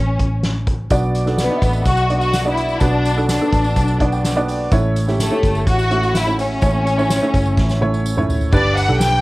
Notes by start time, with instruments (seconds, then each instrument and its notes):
Already playing: picked electric bass A1, violin section C#4
0.19 kick, closed hi-hat
0.43 snare, closed hi-hat
0.67 kick, closed hi-hat
0.90 picked electric bass B1, upright piano B2 B3 D4 F#4 D5, kick, closed hi-hat, tambourine
1.15 closed hi-hat, tambourine
1.26 upright piano B3 D4 F#4 A4, snare, tambourine
1.38 violin section B3, snare, closed hi-hat, tambourine
1.50 upright piano B3 D4 F#4 D#5
1.57 upright piano E5
1.62 picked electric bass A1, kick, closed hi-hat, tambourine
1.73 tambourine
1.85 picked electric bass B1, violin section F#4, kick, closed hi-hat, tambourine
1.97 tambourine
2.10 upright piano B3 D4 F#4 D5, closed hi-hat
2.18 violin section F#4, tambourine
2.33 snare, closed hi-hat, tambourine
2.45 upright piano B3 D4 F#4 D5
2.50 violin section E4
2.57 closed hi-hat, tambourine
2.69 tambourine
2.80 picked electric bass B1, upright piano B2 B3 D4 F#4 B4, violin section D4, kick, closed hi-hat, tambourine
3.05 closed hi-hat, tambourine
3.16 upright piano B3 D4 F#4 A4, tambourine
3.29 violin section D4, snare, closed hi-hat, tambourine
3.41 upright piano B3 D4 F#4 A4
3.52 picked electric bass A1, kick, closed hi-hat, tambourine
3.64 tambourine
3.76 picked electric bass B1, kick, closed hi-hat, tambourine
3.88 tambourine
4.00 upright piano B3 D4 F#4 D5 A5, kick, closed hi-hat
4.12 upright piano G5, tambourine
4.24 upright piano F#5, snare, closed hi-hat, tambourine
4.36 upright piano B3 D4 F#4 D5
4.48 open hi-hat, tambourine
4.71 picked electric bass A1, upright piano A2 A3 C#4 E4 C#5, kick, closed hi-hat, tambourine
4.96 closed hi-hat, tambourine
5.08 upright piano A3 C#4 E4 G4, snare, tambourine
5.19 violin section A3, snare, closed hi-hat, tambourine
5.31 upright piano A3 C#4 E4 G4
5.43 picked electric bass G1, kick, closed hi-hat, tambourine
5.55 tambourine
5.67 picked electric bass A1, violin section F#4, kick, closed hi-hat, tambourine
5.79 tambourine
5.90 upright piano A3 C#4 E4 F#4, closed hi-hat
6.03 tambourine
6.15 violin section E4, snare, closed hi-hat, tambourine
6.26 upright piano A3 C#4 E4 E5
6.39 violin section C#4, open hi-hat, tambourine
6.62 picked electric bass A1, upright piano A2 A3 C#4 E4 C#5, kick, closed hi-hat, tambourine
6.86 closed hi-hat, tambourine
6.97 upright piano A3 C#4 E4 C#5, tambourine
7.10 snare, closed hi-hat, tambourine
7.22 upright piano A3 C#4 E4 C#5
7.34 picked electric bass G1, kick, closed hi-hat, tambourine
7.45 tambourine
7.57 picked electric bass A1, kick, snare, tambourine
7.69 snare, tambourine
7.81 upright piano A3 C#4 E4 C#5, high tom
7.94 tambourine
8.06 tambourine
8.17 upright piano A3 C#4 E4 C#5, mid tom
8.29 floor tom, tambourine
8.41 floor tom, tambourine
8.52 picked electric bass G1, upright piano G2 D4 G4 B4, violin section D5, kick, crash, tambourine
8.76 violin section F#5, hi-hat pedal, open hi-hat, tambourine
8.88 picked electric bass B1, upright piano D4 G4 A4
9.00 violin section G5, snare, hi-hat pedal, open hi-hat, tambourine